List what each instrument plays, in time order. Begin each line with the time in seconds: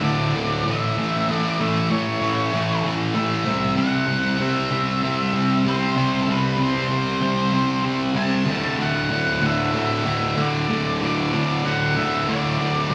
0.02 distorted electric guitar D2 A2 D3, lead electric guitar D5
0.33 distorted electric guitar D2 A2 D3
0.66 distorted electric guitar A2 E3 A3, lead electric guitar E5
0.97 distorted electric guitar A2 E3 A3
1.29 distorted electric guitar A2 E3 A3
1.35 lead electric guitar D5
1.59 distorted electric guitar A2 E3 A3, lead electric guitar E5
1.90 distorted electric guitar A2 E3 A3, lead electric guitar C#5
2.21 distorted electric guitar A2 E3 A3
2.53 distorted electric guitar A2 E3 A3
2.84 distorted electric guitar A2 E3 A3
3.14 distorted electric guitar A2 E3 A3, lead electric guitar E5
3.45 distorted electric guitar C3 G3 C4
3.76 distorted electric guitar C3 G3 C4, lead electric guitar F#5
4.07 distorted electric guitar C3 G3 C4
4.38 distorted electric guitar C3 G3 C4, lead electric guitar E5
4.71 distorted electric guitar C3 G3 C4
5.03 distorted electric guitar C3 G3 C4
5.33 distorted electric guitar C3 G3 C4
5.65 distorted electric guitar C3 G3 C4, lead electric guitar C5
5.96 distorted electric guitar C3 G3 C4
6.22 lead electric guitar A4
6.28 distorted electric guitar C3 G3 C4
6.32 lead electric guitar B4
6.58 distorted electric guitar C3 G3 C4
6.62 lead electric guitar C5
6.90 distorted electric guitar C3 G3 C4
7.21 distorted electric guitar C3 G3 C4
7.53 distorted electric guitar C3 G3 C4
7.83 distorted electric guitar C3 G3 C4
8.15 distorted electric guitar C3 G3 C4, lead electric guitar A5
8.46 distorted electric guitar D2 A2 D3
8.78 distorted electric guitar D2 A2 D3
8.82 lead electric guitar F#5
9.09 distorted electric guitar D2 A2 D3
9.41 distorted electric guitar D2 A2 D3
9.46 lead electric guitar E5
9.73 distorted electric guitar D2 A2 D3
9.77 lead electric guitar E5
10.04 distorted electric guitar D2 A2 D3
10.36 distorted electric guitar D2 A2 D3
10.41 lead electric guitar D5
10.68 distorted electric guitar D2 A2 D3
11.01 distorted electric guitar D2 A2 D3
11.06 lead electric guitar D5
11.33 distorted electric guitar D2 A2 D3
11.65 distorted electric guitar D2 A2 D3, lead electric guitar F#5
11.96 distorted electric guitar D2 A2 D3, lead electric guitar E5
12.28 distorted electric guitar D2 A2 D3, lead electric guitar D5
12.59 distorted electric guitar D2 A2 D3
12.90 distorted electric guitar D2 A2